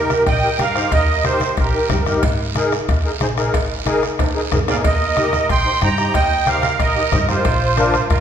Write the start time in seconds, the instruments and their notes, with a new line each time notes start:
Already playing: upright bass D#2, accordion D#4 G4 A#4, trumpet G4
0.10 bombo rim, high conga, short guiro
0.26 upright bass A#1, trumpet D#5, accordion G5, bombo low, bombo rim, cowbell, long guiro
0.42 accordion D#4 G4 A#4
0.59 upright bass G2, accordion D#4 G4 A#4 F5, trumpet A#4, bombo rim, high conga, short guiro
0.75 accordion D#4 G4 C5, bombo rim, short guiro
0.92 upright bass D#2, trumpet A#4, accordion D#5, bombo low, bombo rim, cowbell, long guiro
1.24 accordion D#4 G4 A#4 C5, trumpet G4, bombo rim, high conga, short guiro
1.40 bombo rim, high conga, short guiro
1.57 upright bass A#1, trumpet G4, accordion A#4, bombo low, bombo rim, cowbell, long guiro
1.73 accordion D#4 G4 A#4
1.90 upright bass G2, accordion D#4 G4 A#4, bombo low, bombo rim, high conga, low conga, short guiro
2.06 accordion D#4 G4 A#4, bombo rim, low conga, short guiro
2.23 upright bass G#1, bombo low, bombo rim, cowbell, long guiro
2.55 accordion D#4 G#4 A#4, bombo rim, high conga, short guiro
2.72 bombo rim, short guiro
2.89 upright bass D#2, bombo low, bombo rim, cowbell, long guiro
3.05 accordion D#4 G#4 A#4
3.21 upright bass A#1, accordion D#4 G#4 C5, bombo rim, high conga, short guiro
3.37 accordion D#4 G#4 A#4, bombo rim, short guiro
3.54 upright bass G#1, bombo low, bombo rim, cowbell, long guiro
3.86 accordion D#4 G#4 A#4, bombo rim, high conga, short guiro
4.03 bombo rim, short guiro
4.19 upright bass D#2, bombo low, bombo rim, cowbell, high timbale, long guiro
4.36 accordion D#4 G#4 A#4
4.51 upright bass A#1, accordion D#4 G#4 A#4, bombo low, bombo rim, high conga, low conga, short guiro
4.68 accordion D#4 G#4 A#4 F5, trumpet D5, bombo rim, low timbale, short guiro
4.84 upright bass D#2, trumpet A#4, accordion D#5, bombo low, bombo rim, cowbell, long guiro
5.17 accordion D#4 G4 A#4, bombo rim, high conga, short guiro
5.33 bombo rim, high conga, short guiro
5.49 upright bass A#1, trumpet G5, accordion C6, bombo low, bombo rim, cowbell, long guiro
5.66 accordion D#4 G4 C5
5.82 upright bass G2, accordion D#4 G4 C5 A#5, trumpet G5, bombo rim, high conga, short guiro
5.98 accordion D#4 G4 C5, bombo rim, short guiro
6.14 upright bass D#2, trumpet D#5, accordion G5, bombo low, bombo rim, cowbell, long guiro
6.47 accordion D#4 G4 C5 F5, trumpet A#4, bombo rim, high conga, short guiro
6.63 bombo rim, high conga, short guiro
6.80 upright bass A#1, trumpet A#4, accordion D#5, bombo low, bombo rim, cowbell, long guiro
6.96 accordion D#4 G4 A#4
7.12 upright bass G2, accordion D#4 G4 C5, bombo low, bombo rim, high conga, low conga, short guiro
7.29 accordion D#4 G4 A#4 C5, trumpet F4, bombo rim, low conga, short guiro
7.45 upright bass A#1, bombo low, bombo rim, cowbell, long guiro
7.77 accordion D4 F4 A#4, bombo rim, high conga, short guiro
7.94 bombo rim, high conga, short guiro
8.10 upright bass F2, trumpet F4, accordion A#4, bombo low, bombo rim, cowbell, long guiro